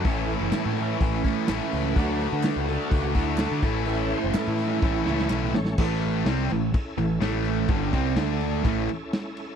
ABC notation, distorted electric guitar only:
X:1
M:4/4
L:1/8
Q:1/4=126
K:Amix
V:1 name="Distorted electric guitar"
[A,,E,A,CE]4- [A,,E,A,CE] [A,,E,A,CE] [A,,E,A,CE]2 | [D,A,DF]4- [D,A,DF] [D,A,DF] [D,A,DF] [A,,E,A,CE]- | [A,,E,A,CE]4 [A,,E,A,CE] [A,,E,A,CE]2 z | [A,,E,A,]2 [=C,G,=C] [A,,E,] z [A,,E,] [A,,E,A,]2 |
[G,,D,G,] [=C,G,=C] [D,A,D]2 [A,,E,A,] z3 |]